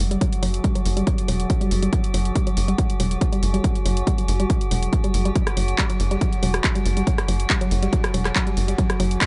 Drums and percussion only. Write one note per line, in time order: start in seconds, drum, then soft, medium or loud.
0.11 closed hi-hat medium
0.21 kick loud
0.21 closed hi-hat medium
0.33 closed hi-hat medium
0.43 open hi-hat loud
0.54 closed hi-hat medium
0.64 kick loud
0.64 closed hi-hat medium
0.75 closed hi-hat medium
0.86 open hi-hat medium
0.97 closed hi-hat medium
1.07 kick loud
1.07 closed hi-hat medium
1.18 closed hi-hat medium
1.28 open hi-hat loud
1.40 closed hi-hat medium
1.50 kick loud
1.50 closed hi-hat medium
1.61 closed hi-hat medium
1.71 open hi-hat medium
1.83 closed hi-hat medium
1.93 kick loud
1.93 closed hi-hat medium
2.04 closed hi-hat medium
2.14 open hi-hat loud
2.25 closed hi-hat medium
2.36 kick loud
2.36 closed hi-hat medium
2.47 closed hi-hat medium
2.57 open hi-hat loud
2.68 closed hi-hat medium
2.78 kick loud
2.78 closed hi-hat medium
2.90 closed hi-hat medium
3.00 open hi-hat loud
3.11 closed hi-hat medium
3.21 kick loud
3.21 closed hi-hat medium
3.33 closed hi-hat medium
3.43 open hi-hat medium
3.54 closed hi-hat medium
3.64 kick loud
3.64 closed hi-hat medium
3.75 closed hi-hat medium
3.86 open hi-hat loud
3.97 closed hi-hat soft
4.07 kick loud
4.07 closed hi-hat medium
4.18 closed hi-hat medium
4.28 open hi-hat loud
4.40 closed hi-hat medium
4.50 kick loud
4.50 closed hi-hat medium
4.61 closed hi-hat medium
4.71 open hi-hat loud
4.83 closed hi-hat medium
4.93 kick loud
4.93 closed hi-hat medium
5.04 closed hi-hat medium
5.14 open hi-hat medium
5.25 closed hi-hat medium
5.36 kick loud
5.36 closed hi-hat medium
5.47 cross-stick medium
5.47 closed hi-hat medium
5.57 open hi-hat loud
5.68 closed hi-hat soft
5.78 kick loud
5.78 clap loud
5.78 closed hi-hat medium
5.90 closed hi-hat soft
6.00 open hi-hat medium
6.11 closed hi-hat soft
6.21 kick loud
6.21 closed hi-hat medium
6.33 closed hi-hat medium
6.43 open hi-hat loud
6.54 cross-stick medium
6.54 closed hi-hat medium
6.64 kick loud
6.64 clap loud
6.64 closed hi-hat medium
6.75 closed hi-hat soft
6.86 open hi-hat medium
6.97 closed hi-hat soft
7.07 kick loud
7.07 closed hi-hat medium
7.18 cross-stick medium
7.18 closed hi-hat medium
7.28 open hi-hat loud
7.40 closed hi-hat soft
7.50 kick loud
7.50 clap loud
7.50 closed hi-hat medium
7.61 closed hi-hat medium
7.71 open hi-hat medium
7.83 closed hi-hat medium
7.93 kick loud
7.93 closed hi-hat medium
8.04 cross-stick medium
8.04 closed hi-hat soft
8.14 open hi-hat loud
8.25 cross-stick medium
8.25 clap soft
8.25 closed hi-hat soft
8.36 kick loud
8.36 clap loud
8.36 closed hi-hat medium
8.47 closed hi-hat soft
8.57 open hi-hat medium
8.68 closed hi-hat soft
8.78 kick loud
8.78 closed hi-hat medium
8.90 cross-stick medium
8.90 closed hi-hat medium
9.00 open hi-hat loud
9.11 closed hi-hat medium
9.21 kick loud
9.21 clap loud
9.21 closed hi-hat medium